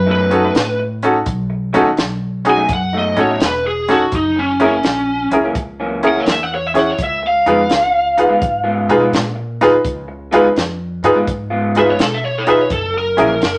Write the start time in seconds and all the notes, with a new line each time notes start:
Already playing: F#2
0.06 B2 F#3 A3 D#4
0.11 B4
0.31 C#4 D#4 F#4 A4, closed hi-hat
0.43 B2 F#3 A3 D#4
0.55 A2, snare, closed hi-hat
0.79 muted clean electric guitar stroke
1.03 C#4 D#4 F#4 A4, closed hi-hat
1.26 B1, kick, closed hi-hat
1.50 muted clean electric guitar stroke
1.73 D#2 B2 F#3 A3 C#4 D#4 F#4 A4, closed hi-hat
1.97 B1, muted clean electric guitar stroke, snare, closed hi-hat
2.45 C#4 D#4 F#4 G#4, closed hi-hat
2.50 G#5
2.57 B2 F#3 A3 D#4
2.69 F#2, muted clean electric guitar stroke, kick, closed hi-hat
2.74 F#5
2.93 B2 F#3 A3 D#4
2.98 D#5
3.16 A2 C#4 D#4 F#4 A4, closed hi-hat
3.21 C#5
3.30 B2 F#3 A3 D#4
3.40 E1, snare, closed hi-hat
3.45 B4
3.65 G#4, muted clean electric guitar stroke
3.88 C#4 D#4 F#4 A4, snare, closed hi-hat
4.12 F#1 D#4, kick, closed hi-hat
4.36 C#4, muted clean electric guitar stroke
4.60 F#2 E3 A#3 C#4 E4 G#4 A#4, closed hi-hat
4.65 C#4
4.83 A#1, muted clean electric guitar stroke, snare, closed hi-hat
5.31 C#2 C#4 E4 G#4 A#4, closed hi-hat
5.44 F#2 E3 A#3 C#4
5.55 C#2, muted clean electric guitar stroke, kick, closed hi-hat
5.80 F#2 E3 A#3 C#4
6.03 C#4 E4 G#4 A#4, closed hi-hat
6.08 F#5
6.16 F#2 E3 A#3 C#4
6.20 C#5
6.26 E2, snare, closed hi-hat
6.30 E5
6.43 F#5
6.52 C#5, muted clean electric guitar stroke
6.67 E5
6.74 C#4 E4 G#4 C#5, snare, closed hi-hat
6.79 F#5
6.91 C#5
6.98 C#2, kick, closed hi-hat
7.03 E5
7.23 muted clean electric guitar stroke
7.27 F5
7.46 F2 C#3 G#3 B3 D#4 F4 G#4 B4, closed hi-hat
7.70 C#2, muted clean electric guitar stroke, snare, closed hi-hat
8.17 D#4 F4 G#4 B4, closed hi-hat
8.29 C#3 G#3 B3 F4
8.40 G#2, muted clean electric guitar stroke, kick, closed hi-hat
8.64 C#3 G#3 B3 F4
8.88 B2 D#4 F4 G#4 B4, closed hi-hat
9.00 C#3 G#3 B3 F4
9.12 A#2, snare, closed hi-hat
9.36 muted clean electric guitar stroke
9.61 D#4 F4 G#4 B4, snare, closed hi-hat
9.84 C#2, kick, closed hi-hat
10.08 muted clean electric guitar stroke
10.31 C#3 G#3 B3 D#4 F4 G#4 B4, closed hi-hat
10.56 F2, muted clean electric guitar stroke, snare, closed hi-hat
11.03 G#2 D#4 F4 G#4 B4, closed hi-hat
11.15 C#3 G#3 B3 F4
11.27 G#2, muted clean electric guitar stroke, kick, closed hi-hat
11.50 C#3 G#3 B3 F4
11.75 D#4 F4 G#4 B4 E5, closed hi-hat
11.85 C#3 G#3 B3 F4
11.91 C#5
11.98 B2 A4, snare, closed hi-hat
12.14 E5
12.23 C#5, muted clean electric guitar stroke
12.38 A4
12.47 D#4 F4 G#4 B4 E5, closed hi-hat
12.61 C#5
12.70 F#1 A4, kick, closed hi-hat
12.93 muted clean electric guitar stroke
12.98 A#4
13.17 A#1 F#2 E3 A#3 C#4 E4 G#4 A#4, closed hi-hat
13.40 F#1, muted clean electric guitar stroke, snare, closed hi-hat